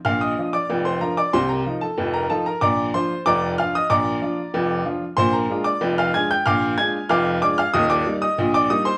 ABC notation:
X:1
M:2/4
L:1/16
Q:1/4=94
K:Bb
V:1 name="Upright piano"
[ff'] [ee']2 [dd']2 [cc'] [Bb] [dd'] | [cc'] [Bb]2 [Aa]2 [Bb] [Aa] [Bb] | [dbd']2 [cc']2 [dbd']2 [ff'] [ee'] | [dbd']6 z2 |
[cc'] [Bb]2 [dd']2 [ff'] [_a_a'] [gg'] | [fd'f']2 [_a_a']2 [fd'f']2 [dd'] [ff'] | [ee'] [dd']2 [ee']2 [dd'] [ee'] [cc'] |]
V:2 name="Upright piano" clef=bass
[B,,,B,,]2 [F,DF]2 [F,,,F,,]2 [F,DF]2 | [C,,C,]2 [F,EF]2 [F,,,F,,]2 [F,EF]2 | [B,,,B,,]2 [F,DF]2 [F,,,F,,]2 [F,DF]2 | [B,,,B,,]2 [F,DF]2 [F,,,F,,]2 [F,DF]2 |
[B,,,B,,]2 [_A,DF]2 [F,,,F,,]2 [A,DF]2 | [B,,,B,,]2 [_A,DF]2 [F,,,F,,]2 [A,DF]2 | [E,,,E,,]2 [G,B,E]2 [B,,,B,,]2 [G,B,E]2 |]